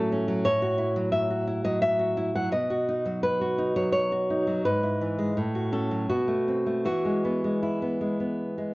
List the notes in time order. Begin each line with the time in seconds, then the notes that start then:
Already playing: A2 F#3 A3 C#4 A4
0.13 C#4
0.28 F#3
0.45 A2 C#5
0.62 F#4
0.78 E4
0.96 F#3
1.12 E5
1.31 F#4
1.48 E4
1.65 F#3 D#5
1.82 E5
1.99 F#4
2.17 E4
2.35 F#3 F#5
2.52 B2 D#5
2.70 F#4
2.89 D#4
3.05 F#3
3.23 B4
3.41 F#4
3.58 D#4
3.76 F#3 C#5
3.92 C#5
4.12 F#4
4.30 D#4
4.47 F#3
4.65 G#2 B4
4.83 E4
5.01 E3
5.19 G#3
5.37 A2
5.55 F#4
5.72 C#4 A4
5.91 F#3
6.09 B2 F#4
6.28 A3
6.48 C4
6.66 A3
6.85 E3 F#4
7.05 G#3
7.25 B3
7.44 G#3
7.63 E4
7.82 B3
8.01 G#3
8.20 B3
8.58 G#3